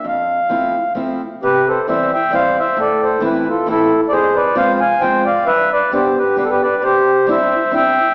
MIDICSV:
0, 0, Header, 1, 3, 480
1, 0, Start_track
1, 0, Key_signature, 0, "major"
1, 0, Tempo, 456969
1, 40, Time_signature, 3, 2, 24, 8
1, 2920, Tempo, 450450
1, 8635, End_track
2, 0, Start_track
2, 0, Title_t, "Accordion"
2, 0, Program_c, 0, 21
2, 79, Note_on_c, 0, 77, 82
2, 978, Note_off_c, 0, 77, 0
2, 1503, Note_on_c, 0, 67, 60
2, 1514, Note_on_c, 0, 71, 91
2, 1737, Note_off_c, 0, 67, 0
2, 1764, Note_on_c, 0, 69, 61
2, 1767, Note_off_c, 0, 71, 0
2, 1774, Note_on_c, 0, 72, 72
2, 1961, Note_off_c, 0, 69, 0
2, 1965, Note_off_c, 0, 72, 0
2, 1981, Note_on_c, 0, 72, 59
2, 1983, Note_on_c, 0, 76, 73
2, 2215, Note_off_c, 0, 72, 0
2, 2228, Note_off_c, 0, 76, 0
2, 2243, Note_on_c, 0, 76, 64
2, 2250, Note_on_c, 0, 79, 86
2, 2439, Note_off_c, 0, 76, 0
2, 2460, Note_on_c, 0, 77, 92
2, 2462, Note_on_c, 0, 72, 71
2, 2463, Note_off_c, 0, 79, 0
2, 2693, Note_off_c, 0, 72, 0
2, 2717, Note_off_c, 0, 77, 0
2, 2727, Note_on_c, 0, 76, 85
2, 2729, Note_on_c, 0, 72, 63
2, 2919, Note_off_c, 0, 72, 0
2, 2939, Note_off_c, 0, 76, 0
2, 2940, Note_on_c, 0, 69, 70
2, 2951, Note_on_c, 0, 74, 85
2, 3171, Note_off_c, 0, 69, 0
2, 3187, Note_on_c, 0, 69, 64
2, 3188, Note_on_c, 0, 72, 75
2, 3202, Note_off_c, 0, 74, 0
2, 3388, Note_off_c, 0, 69, 0
2, 3410, Note_off_c, 0, 72, 0
2, 3417, Note_on_c, 0, 71, 64
2, 3419, Note_on_c, 0, 64, 67
2, 3650, Note_off_c, 0, 64, 0
2, 3672, Note_on_c, 0, 65, 56
2, 3674, Note_off_c, 0, 71, 0
2, 3677, Note_on_c, 0, 69, 72
2, 3869, Note_off_c, 0, 65, 0
2, 3880, Note_off_c, 0, 69, 0
2, 3896, Note_on_c, 0, 64, 68
2, 3896, Note_on_c, 0, 69, 98
2, 4228, Note_off_c, 0, 64, 0
2, 4228, Note_off_c, 0, 69, 0
2, 4312, Note_on_c, 0, 74, 64
2, 4347, Note_on_c, 0, 68, 72
2, 4348, Note_on_c, 0, 72, 110
2, 4360, Note_off_c, 0, 74, 0
2, 4589, Note_off_c, 0, 68, 0
2, 4599, Note_on_c, 0, 71, 74
2, 4602, Note_on_c, 0, 74, 86
2, 4616, Note_off_c, 0, 72, 0
2, 4808, Note_off_c, 0, 71, 0
2, 4819, Note_on_c, 0, 72, 66
2, 4827, Note_on_c, 0, 77, 100
2, 4832, Note_off_c, 0, 74, 0
2, 5064, Note_off_c, 0, 72, 0
2, 5070, Note_off_c, 0, 77, 0
2, 5077, Note_on_c, 0, 80, 91
2, 5086, Note_on_c, 0, 77, 71
2, 5292, Note_off_c, 0, 77, 0
2, 5294, Note_on_c, 0, 79, 92
2, 5297, Note_on_c, 0, 72, 76
2, 5309, Note_off_c, 0, 80, 0
2, 5543, Note_off_c, 0, 72, 0
2, 5554, Note_on_c, 0, 74, 70
2, 5566, Note_on_c, 0, 77, 90
2, 5568, Note_off_c, 0, 79, 0
2, 5764, Note_off_c, 0, 74, 0
2, 5780, Note_on_c, 0, 76, 102
2, 5785, Note_on_c, 0, 71, 81
2, 5792, Note_off_c, 0, 77, 0
2, 6026, Note_off_c, 0, 71, 0
2, 6050, Note_off_c, 0, 76, 0
2, 6056, Note_on_c, 0, 74, 88
2, 6057, Note_on_c, 0, 71, 60
2, 6257, Note_off_c, 0, 71, 0
2, 6278, Note_off_c, 0, 74, 0
2, 6288, Note_on_c, 0, 67, 52
2, 6293, Note_on_c, 0, 72, 75
2, 6522, Note_off_c, 0, 67, 0
2, 6548, Note_on_c, 0, 67, 54
2, 6548, Note_on_c, 0, 71, 70
2, 6549, Note_off_c, 0, 72, 0
2, 6735, Note_off_c, 0, 71, 0
2, 6746, Note_off_c, 0, 67, 0
2, 6751, Note_on_c, 0, 71, 85
2, 6762, Note_on_c, 0, 67, 71
2, 6819, Note_off_c, 0, 67, 0
2, 6820, Note_off_c, 0, 71, 0
2, 6822, Note_on_c, 0, 69, 65
2, 6887, Note_off_c, 0, 69, 0
2, 6888, Note_on_c, 0, 71, 83
2, 6903, Note_on_c, 0, 67, 64
2, 7006, Note_off_c, 0, 71, 0
2, 7017, Note_off_c, 0, 67, 0
2, 7017, Note_on_c, 0, 74, 75
2, 7022, Note_on_c, 0, 71, 61
2, 7228, Note_off_c, 0, 71, 0
2, 7239, Note_on_c, 0, 72, 92
2, 7247, Note_off_c, 0, 74, 0
2, 7249, Note_on_c, 0, 67, 68
2, 7696, Note_off_c, 0, 67, 0
2, 7727, Note_off_c, 0, 72, 0
2, 7740, Note_on_c, 0, 76, 80
2, 7743, Note_on_c, 0, 72, 62
2, 8181, Note_off_c, 0, 72, 0
2, 8212, Note_off_c, 0, 76, 0
2, 8217, Note_on_c, 0, 79, 99
2, 8228, Note_on_c, 0, 76, 77
2, 8635, Note_off_c, 0, 76, 0
2, 8635, Note_off_c, 0, 79, 0
2, 8635, End_track
3, 0, Start_track
3, 0, Title_t, "Steel-string acoustic guitar"
3, 0, Program_c, 1, 25
3, 47, Note_on_c, 1, 41, 65
3, 407, Note_off_c, 1, 41, 0
3, 519, Note_on_c, 1, 53, 61
3, 525, Note_on_c, 1, 57, 51
3, 532, Note_on_c, 1, 60, 54
3, 540, Note_on_c, 1, 64, 62
3, 778, Note_off_c, 1, 53, 0
3, 781, Note_off_c, 1, 57, 0
3, 785, Note_off_c, 1, 60, 0
3, 787, Note_off_c, 1, 64, 0
3, 996, Note_on_c, 1, 53, 59
3, 997, Note_on_c, 1, 57, 59
3, 1012, Note_on_c, 1, 60, 62
3, 1014, Note_on_c, 1, 64, 67
3, 1261, Note_off_c, 1, 53, 0
3, 1261, Note_off_c, 1, 57, 0
3, 1270, Note_off_c, 1, 60, 0
3, 1270, Note_off_c, 1, 64, 0
3, 1500, Note_on_c, 1, 48, 57
3, 1858, Note_off_c, 1, 48, 0
3, 1969, Note_on_c, 1, 52, 57
3, 1974, Note_on_c, 1, 55, 57
3, 1986, Note_on_c, 1, 60, 53
3, 1991, Note_on_c, 1, 64, 61
3, 2227, Note_off_c, 1, 52, 0
3, 2228, Note_off_c, 1, 55, 0
3, 2235, Note_off_c, 1, 60, 0
3, 2237, Note_off_c, 1, 64, 0
3, 2422, Note_on_c, 1, 52, 56
3, 2427, Note_on_c, 1, 55, 60
3, 2441, Note_on_c, 1, 60, 50
3, 2446, Note_on_c, 1, 64, 65
3, 2691, Note_off_c, 1, 52, 0
3, 2693, Note_off_c, 1, 55, 0
3, 2701, Note_off_c, 1, 60, 0
3, 2701, Note_off_c, 1, 64, 0
3, 2906, Note_on_c, 1, 45, 67
3, 3276, Note_off_c, 1, 45, 0
3, 3371, Note_on_c, 1, 52, 65
3, 3379, Note_on_c, 1, 57, 59
3, 3389, Note_on_c, 1, 64, 71
3, 3390, Note_on_c, 1, 60, 61
3, 3643, Note_off_c, 1, 52, 0
3, 3647, Note_off_c, 1, 57, 0
3, 3652, Note_off_c, 1, 64, 0
3, 3653, Note_off_c, 1, 60, 0
3, 3861, Note_on_c, 1, 52, 59
3, 3873, Note_on_c, 1, 57, 60
3, 3876, Note_on_c, 1, 60, 57
3, 3880, Note_on_c, 1, 64, 66
3, 4127, Note_off_c, 1, 52, 0
3, 4133, Note_off_c, 1, 57, 0
3, 4133, Note_off_c, 1, 60, 0
3, 4136, Note_off_c, 1, 64, 0
3, 4361, Note_on_c, 1, 41, 73
3, 4719, Note_off_c, 1, 41, 0
3, 4811, Note_on_c, 1, 53, 72
3, 4814, Note_on_c, 1, 56, 61
3, 4820, Note_on_c, 1, 60, 59
3, 4829, Note_on_c, 1, 65, 78
3, 5078, Note_off_c, 1, 53, 0
3, 5081, Note_off_c, 1, 56, 0
3, 5081, Note_off_c, 1, 60, 0
3, 5087, Note_off_c, 1, 65, 0
3, 5299, Note_on_c, 1, 53, 68
3, 5309, Note_on_c, 1, 56, 56
3, 5318, Note_on_c, 1, 60, 60
3, 5323, Note_on_c, 1, 65, 64
3, 5562, Note_off_c, 1, 53, 0
3, 5567, Note_off_c, 1, 56, 0
3, 5572, Note_off_c, 1, 60, 0
3, 5574, Note_off_c, 1, 65, 0
3, 5782, Note_on_c, 1, 43, 65
3, 6148, Note_off_c, 1, 43, 0
3, 6259, Note_on_c, 1, 55, 63
3, 6271, Note_on_c, 1, 59, 57
3, 6273, Note_on_c, 1, 62, 58
3, 6280, Note_on_c, 1, 67, 65
3, 6525, Note_off_c, 1, 55, 0
3, 6531, Note_off_c, 1, 62, 0
3, 6532, Note_off_c, 1, 59, 0
3, 6532, Note_off_c, 1, 67, 0
3, 6738, Note_on_c, 1, 55, 58
3, 6744, Note_on_c, 1, 59, 49
3, 6753, Note_on_c, 1, 62, 56
3, 6760, Note_on_c, 1, 67, 58
3, 7010, Note_off_c, 1, 55, 0
3, 7013, Note_off_c, 1, 59, 0
3, 7018, Note_off_c, 1, 62, 0
3, 7019, Note_off_c, 1, 67, 0
3, 7227, Note_on_c, 1, 48, 66
3, 7601, Note_off_c, 1, 48, 0
3, 7700, Note_on_c, 1, 55, 66
3, 7714, Note_on_c, 1, 60, 53
3, 7722, Note_on_c, 1, 62, 59
3, 7727, Note_on_c, 1, 64, 64
3, 7973, Note_off_c, 1, 55, 0
3, 7982, Note_off_c, 1, 60, 0
3, 7984, Note_off_c, 1, 62, 0
3, 7984, Note_off_c, 1, 64, 0
3, 8174, Note_on_c, 1, 55, 54
3, 8179, Note_on_c, 1, 60, 52
3, 8185, Note_on_c, 1, 62, 49
3, 8202, Note_on_c, 1, 64, 67
3, 8447, Note_off_c, 1, 55, 0
3, 8450, Note_off_c, 1, 60, 0
3, 8451, Note_off_c, 1, 62, 0
3, 8461, Note_off_c, 1, 64, 0
3, 8635, End_track
0, 0, End_of_file